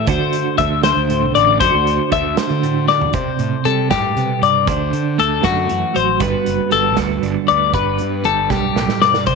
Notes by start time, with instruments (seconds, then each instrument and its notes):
Already playing: clean electric guitar A3
0.07 fingered electric bass D2, clean electric guitar D3 F#4 C5, kick, closed hi-hat
0.19 fingered electric bass D3
0.33 closed hi-hat
0.58 fingered electric bass D2, clean electric guitar A3 C5 E5, kick, closed hi-hat
0.83 clean electric guitar C5, snare, closed hi-hat
0.97 fingered electric bass D2
1.10 clean electric guitar A2, closed hi-hat
1.23 fingered electric bass C2
1.35 fingered electric bass A1, clean electric guitar D5, closed hi-hat
1.60 fingered electric bass F#2, clean electric guitar D3 F#4 C5, kick, closed hi-hat
1.74 fingered electric bass D2
1.87 closed hi-hat
2.11 fingered electric bass D2, clean electric guitar A3 C5 E5, kick, closed hi-hat
2.37 clean electric guitar C5, snare, closed hi-hat
2.50 fingered electric bass D3
2.63 clean electric guitar A2, closed hi-hat
2.88 clean electric guitar D5, snare
3.01 floor tom
3.13 fingered electric bass C3, clean electric guitar C3 C5, kick, closed hi-hat
3.39 fingered electric bass A2, closed hi-hat
3.65 fingered electric bass C3, clean electric guitar G3 A4, closed hi-hat
3.91 fingered electric bass G2, clean electric guitar A2 G4, kick, snare, closed hi-hat
4.16 clean electric guitar B2, fingered electric bass C3, closed hi-hat
4.42 fingered electric bass G2, clean electric guitar C3 D5, closed hi-hat
4.67 fingered electric bass D2, clean electric guitar D3 C5, kick, closed hi-hat
4.93 fingered electric bass D3, closed hi-hat
5.18 fingered electric bass D2, clean electric guitar A3 A4, closed hi-hat
5.43 fingered electric bass F#2, clean electric guitar D3 F#4, kick, snare, closed hi-hat
5.69 fingered electric bass F#2, clean electric guitar E3, closed hi-hat
5.95 fingered electric bass A1, clean electric guitar F#3 C5, closed hi-hat
6.20 fingered electric bass G1, clean electric guitar G2 G3 B3 F#4 B4, kick, closed hi-hat
6.46 fingered electric bass F#1, closed hi-hat
6.70 fingered electric bass G1, clean electric guitar G3 A4, closed hi-hat
6.97 fingered electric bass D2, clean electric guitar F#4, kick, snare, closed hi-hat
7.22 fingered electric bass G1, clean electric guitar D3, closed hi-hat
7.48 fingered electric bass D2, clean electric guitar B3 D5, closed hi-hat
7.73 fingered electric bass G1, clean electric guitar G2 B4, kick, closed hi-hat
7.98 fingered electric bass G2, closed hi-hat
8.24 fingered electric bass G1, clean electric guitar G3 A4, closed hi-hat
8.50 fingered electric bass B1, clean electric guitar G2 G4, kick, snare
8.75 fingered electric bass B1, clean electric guitar A2, snare
8.89 snare
9.01 fingered electric bass G2, clean electric guitar B2 D5, snare
9.14 snare
9.26 fingered electric bass C2, clean electric guitar C3 C5, kick, closed hi-hat